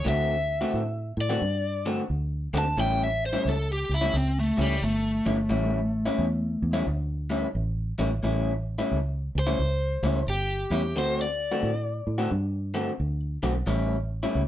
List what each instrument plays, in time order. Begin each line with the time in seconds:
0.05 fingered electric bass D2, clean electric guitar D3 A3 C4 F#4, overdriven electric guitar E5
0.61 clean electric guitar D3 A3 C4 F#4
0.74 fingered electric bass A2
1.17 fingered electric bass A2, overdriven electric guitar D5
1.29 clean electric guitar D3 A3 C4 F#4
1.42 fingered electric bass G2, muted clean electric guitar stroke
1.86 clean electric guitar D3 A3 C4 F#4
2.10 fingered electric bass D2
2.53 fingered electric bass D2, clean electric guitar D3 A3 C4 F#4
2.58 overdriven electric guitar A5
2.65 muted clean electric guitar stroke
2.77 fingered electric bass A1, clean electric guitar A2 G3 C#4 E4, overdriven electric guitar G5
3.04 overdriven electric guitar E5
3.26 overdriven electric guitar C5
3.33 clean electric guitar A2 G3 C#4 E4
3.45 fingered electric bass C#2, overdriven electric guitar A4
3.73 overdriven electric guitar G4
3.89 fingered electric bass C#2
3.94 overdriven electric guitar E4
4.01 clean electric guitar A2 G3 C#4 E4
4.13 fingered electric bass C#2, overdriven electric guitar C4, muted clean electric guitar stroke
4.40 overdriven electric guitar A3
4.57 fingered electric bass C#2, clean electric guitar A2 G3 C#4 E4, overdriven electric guitar G3
4.82 fingered electric bass G1, overdriven electric guitar A3
5.26 fingered electric bass G1, clean electric guitar A2 G3 C#4 E4
5.38 muted clean electric guitar stroke
5.49 fingered electric bass A1, clean electric guitar A2 G3 C#4 E4
6.06 clean electric guitar A2 G3 C#4 E4
6.18 fingered electric bass E2
6.62 fingered electric bass E2
6.73 clean electric guitar A2 G3 C#4 E4
6.86 fingered electric bass D2, muted clean electric guitar stroke
7.30 clean electric guitar A2 G3 C#4 E4
7.55 fingered electric bass A1
7.98 fingered electric bass A1, clean electric guitar A2 G3 C#4 E4
8.11 muted clean electric guitar stroke
8.23 fingered electric bass A1, clean electric guitar A2 G3 C#4 E4
8.78 clean electric guitar A2 G3 C#4 E4
8.92 fingered electric bass C#2
9.35 fingered electric bass C#2
9.39 overdriven electric guitar C5
9.47 clean electric guitar A2 G3 C#4 E4
9.59 fingered electric bass C#2, muted clean electric guitar stroke
10.03 fingered electric bass C#2, clean electric guitar A2 G3 C#4 E4
10.27 fingered electric bass G1, overdriven electric guitar G4
10.70 fingered electric bass E2, clean electric guitar A2 G3 C#4 E4
10.83 muted clean electric guitar stroke
10.94 fingered electric bass D2, clean electric guitar D3 A3 C4 F#4, overdriven electric guitar C5
11.21 overdriven electric guitar D5
11.51 clean electric guitar D3 A3 C4 F#4
11.63 fingered electric bass A2
12.07 fingered electric bass A2
12.18 clean electric guitar D3 A3 C4 F#4
12.31 fingered electric bass G2, muted clean electric guitar stroke
12.74 clean electric guitar D3 A3 C4 F#4
13.00 fingered electric bass D2
13.43 fingered electric bass B1, clean electric guitar D3 A3 C4 F#4
13.55 muted clean electric guitar stroke
13.66 fingered electric bass A1, clean electric guitar A2 G3 C#4 E4
14.23 clean electric guitar A2 G3 C#4 E4
14.35 fingered electric bass C#2